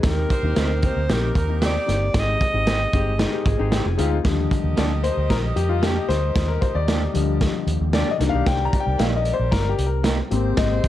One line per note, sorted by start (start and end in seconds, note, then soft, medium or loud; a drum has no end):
0.00 0.25 D#2 medium
0.00 2.11 D#4 medium
0.00 kick loud
0.00 snare loud
0.00 closed hi-hat medium
0.05 0.30 A#3 medium
0.05 2.13 C4 medium
0.05 0.30 C4 medium
0.05 0.30 D#4 medium
0.05 0.30 G4 medium
0.05 2.13 G4 medium
0.05 0.88 A#4 loud
0.30 0.80 D#4 medium
0.30 0.80 G4 medium
0.30 0.80 C5 medium
0.30 kick medium
0.30 closed hi-hat medium
0.43 0.54 D#2 medium
0.43 0.69 A#3 medium
0.43 0.69 C4 medium
0.43 0.69 D#4 medium
0.43 0.69 G4 medium
0.56 0.88 D2 loud
0.56 0.69 C4 medium
0.56 0.69 D#4 medium
0.56 0.69 G4 loud
0.56 snare loud
0.56 closed hi-hat medium
0.82 0.99 A#3 medium
0.82 0.99 C4 medium
0.82 1.00 D#4 medium
0.82 1.04 D#4 medium
0.82 1.00 G4 medium
0.82 1.04 G4 medium
0.82 1.04 A#4 medium
0.82 kick medium
0.82 closed hi-hat medium
0.86 1.14 C5 medium
0.96 1.07 D2 medium
1.09 1.30 A#1 loud
1.09 1.35 A#3 medium
1.09 1.30 C4 medium
1.09 1.35 C4 medium
1.09 1.30 D#4 medium
1.09 1.35 D#4 medium
1.09 1.30 G4 loud
1.09 1.35 G4 medium
1.09 1.63 A#4 medium
1.09 snare loud
1.09 closed hi-hat medium
1.35 1.77 D#2 medium
1.35 1.57 D#4 medium
1.35 1.57 G4 medium
1.35 1.57 A#4 medium
1.35 kick medium
1.35 closed hi-hat medium
1.48 1.74 A#3 medium
1.48 1.74 C4 medium
1.48 1.74 D#4 medium
1.48 1.74 G4 medium
1.61 1.74 C4 medium
1.61 1.99 C4 loud
1.61 1.99 D#4 loud
1.61 1.74 D#4 medium
1.61 1.99 G4 loud
1.61 1.75 G4 loud
1.61 2.21 D5 loud
1.61 snare loud
1.61 closed hi-hat medium
1.87 2.09 G1 medium
1.87 2.04 A#3 medium
1.87 2.04 C4 medium
1.87 2.05 D#4 medium
1.87 2.05 G4 medium
1.87 snare soft
1.87 closed hi-hat medium
2.13 2.35 G#1 loud
2.13 2.39 G#3 medium
2.13 4.23 G#3 medium
2.13 2.39 C4 medium
2.13 4.23 C4 medium
2.13 2.40 D#4 medium
2.13 2.40 G4 medium
2.13 4.23 G#4 medium
2.13 kick loud
2.13 snare loud
2.13 closed hi-hat medium
2.19 3.75 D#5 loud
2.41 kick medium
2.41 closed hi-hat medium
2.53 2.85 G#1 medium
2.53 2.79 G#3 medium
2.53 2.79 C4 medium
2.53 2.79 D#4 medium
2.53 2.79 G4 medium
2.67 2.79 G#3 medium
2.67 2.79 C4 medium
2.67 2.80 G4 medium
2.67 snare loud
2.67 closed hi-hat medium
2.93 3.24 G1 medium
2.93 3.11 G#3 medium
2.93 3.11 C4 medium
2.93 3.11 D#4 medium
2.93 3.11 G4 loud
2.93 kick medium
2.93 closed hi-hat medium
3.18 3.44 G#3 medium
3.18 3.45 C4 medium
3.18 3.45 D#4 medium
3.18 3.33 D#4 medium
3.18 3.45 G4 loud
3.18 3.32 G4 medium
3.18 snare loud
3.18 closed hi-hat medium
3.32 3.45 G4 medium
3.32 3.45 A#4 medium
3.46 3.56 G#1 medium
3.46 3.58 F4 medium
3.46 3.58 G#4 medium
3.46 kick loud
3.46 closed hi-hat medium
3.58 3.80 G#1 medium
3.58 3.84 G#3 medium
3.58 3.84 C4 medium
3.58 3.84 D#4 medium
3.58 3.85 G4 loud
3.58 3.72 G#4 medium
3.58 3.72 C5 loud
3.71 3.84 G#3 medium
3.71 3.84 C4 loud
3.71 3.85 G4 medium
3.71 3.85 G4 loud
3.71 3.85 A#4 medium
3.71 snare loud
3.71 closed hi-hat loud
3.85 3.96 F1 medium
3.85 4.23 F4 medium
3.85 4.23 G#4 medium
3.97 4.20 D2 loud
3.97 4.08 G#3 medium
3.97 4.15 G#3 loud
3.97 4.15 C4 medium
3.97 4.08 C4 medium
3.97 4.15 D#4 medium
3.97 4.16 F4 loud
3.97 4.09 G4 medium
3.97 closed hi-hat medium
4.23 4.46 D#2 loud
4.23 5.00 D3 medium
4.23 8.17 D3 medium
4.23 4.99 F3 medium
4.23 5.00 G3 soft
4.23 10.28 G3 medium
4.23 7.90 G4 medium
4.23 8.17 G4 medium
4.23 7.91 A#4 medium
4.23 7.91 D#5 medium
4.23 kick loud
4.23 snare loud
4.23 closed hi-hat medium
4.51 kick medium
4.51 closed hi-hat medium
4.64 4.75 D#2 medium
4.76 5.09 D2 loud
4.76 4.89 A#3 medium
4.76 4.90 D4 medium
4.76 4.90 G4 medium
4.76 4.85 D5 medium
4.76 snare loud
4.76 closed hi-hat medium
5.04 5.31 C5 medium
5.04 closed hi-hat medium
5.17 5.28 D2 medium
5.30 5.51 A#1 loud
5.30 5.36 A#4 loud
5.30 kick medium
5.30 snare loud
5.30 closed hi-hat medium
5.56 5.98 F2 medium
5.56 5.70 G4 medium
5.56 closed hi-hat medium
5.69 5.83 F4 medium
5.82 5.95 A#3 medium
5.82 5.95 D4 medium
5.82 6.10 G4 medium
5.82 5.96 G4 loud
5.82 snare loud
5.82 closed hi-hat loud
6.09 6.30 D2 medium
6.09 6.50 C5 loud
6.09 snare soft
6.09 closed hi-hat medium
6.36 6.57 D#2 loud
6.36 kick loud
6.36 snare medium
6.36 closed hi-hat medium
6.48 6.62 A#4 medium
6.61 6.76 C5 medium
6.61 kick medium
6.61 closed hi-hat medium
6.75 7.06 D#2 medium
6.75 7.51 D5 medium
6.88 7.00 A#3 medium
6.88 7.01 D4 medium
6.88 7.01 G4 medium
6.88 snare loud
6.88 closed hi-hat medium
7.13 7.46 D2 medium
7.13 8.17 D3 medium
7.13 8.16 F3 medium
7.13 8.16 G3 medium
7.13 closed hi-hat medium
7.41 kick medium
7.41 snare loud
7.41 closed hi-hat medium
7.67 7.78 D#2 medium
7.67 closed hi-hat medium
7.81 8.02 D#2 medium
7.93 8.06 A#3 medium
7.93 8.06 D4 medium
7.93 8.07 G4 loud
7.93 8.12 D5 medium
7.93 snare loud
7.93 closed hi-hat medium
8.08 8.21 A#4 medium
8.08 8.20 D5 medium
8.08 8.16 D#5 loud
8.18 8.31 C2 loud
8.18 8.55 D#3 medium
8.18 8.55 A#3 medium
8.18 10.88 C4 medium
8.18 8.55 D4 medium
8.18 10.02 G4 medium
8.18 8.34 G4 medium
8.18 10.29 A#4 medium
8.18 10.02 A#4 medium
8.18 8.34 A#4 medium
8.18 10.02 D5 medium
8.18 snare soft
8.18 closed hi-hat medium
8.29 8.47 F5 loud
8.34 8.44 B1 medium
8.34 9.10 D#4 medium
8.34 9.10 G4 medium
8.46 8.67 C2 loud
8.46 8.63 G5 loud
8.46 kick loud
8.46 snare loud
8.46 closed hi-hat medium
8.65 8.83 A#5 medium
8.73 kick medium
8.73 closed hi-hat medium
8.80 8.99 G5 medium
8.87 8.97 C2 medium
8.98 9.31 A#1 loud
8.98 9.11 A#3 medium
8.98 9.12 D#4 medium
8.98 9.12 G4 medium
8.98 9.05 F5 medium
8.98 snare loud
8.98 closed hi-hat medium
9.16 9.35 D#5 medium
9.25 closed hi-hat medium
9.34 9.51 C5 medium
9.39 9.50 A#1 medium
9.51 9.73 G1 loud
9.51 9.70 A#4 medium
9.51 kick medium
9.51 snare loud
9.51 closed hi-hat medium
9.69 9.86 G4 medium
9.79 10.20 C2 medium
9.79 closed hi-hat medium
9.86 10.11 A#4 medium
10.03 10.16 A#3 medium
10.03 10.17 D#4 medium
10.03 10.17 G4 medium
10.03 snare loud
10.03 closed hi-hat loud
10.31 10.52 G#1 medium
10.31 10.88 G#3 medium
10.31 10.88 A#3 medium
10.31 10.88 C4 medium
10.31 10.88 G4 medium
10.31 10.88 G#4 medium
10.31 10.88 C5 medium
10.31 closed hi-hat medium
10.57 10.78 G#1 medium
10.57 10.88 D#5 medium
10.57 kick loud
10.57 snare loud
10.57 closed hi-hat medium
10.84 kick medium
10.84 closed hi-hat medium